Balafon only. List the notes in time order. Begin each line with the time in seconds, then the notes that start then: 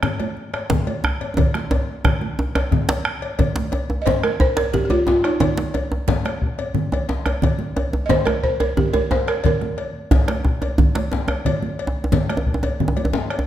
4.02 D#5
4.06 C5
4.24 A#4
4.41 C5
4.57 A#4
4.74 G4
4.85 G4
4.90 F4
5.08 F4
5.25 D#4
5.42 D#4
8.06 D#5
8.10 C5
8.26 A#4
8.44 C5
8.60 A#4
8.77 G4
8.93 A#4
9.12 C5
9.28 A#4
9.46 A#4